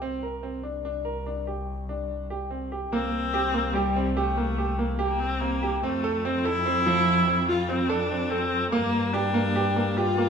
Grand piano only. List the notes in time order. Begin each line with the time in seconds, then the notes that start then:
0.02 C4
0.23 A#4
0.43 C4
0.63 D4
0.85 D4
1.05 A#4
1.26 D4
1.47 G4
1.89 D4
2.30 G4
2.51 C4
2.72 G4
2.93 A#3
3.34 G4
3.54 A#3
3.75 G4
3.96 C4
4.17 G4
4.37 A#3
4.58 G4
4.79 A#3
4.99 G4
5.41 C4
5.63 G4
5.83 C4
6.04 A4
6.25 C4
6.45 A4
6.66 C4
6.86 F3
7.28 C4
7.48 F4
7.69 C4
7.89 A4
8.11 C4
8.31 A4
8.72 A#3
9.14 G4
9.34 A#3
9.56 G4
9.76 A#3
9.97 G4
10.18 A#3